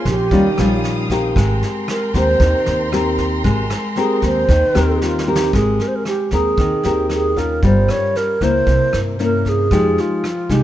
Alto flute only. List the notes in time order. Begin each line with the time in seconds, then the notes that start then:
0.08 G4
1.90 A#4
2.16 C5
3.99 G#4
4.26 C5
5.03 F4
5.30 G4
5.55 G#4
5.82 A#4
5.88 C5
5.96 A#4
6.08 G4
6.33 G#4
7.14 G#4
7.39 A#4
7.65 C5
7.90 C#5
8.17 A#4
8.43 C5
9.23 A#4
9.49 G#4
10.00 F4
10.53 G4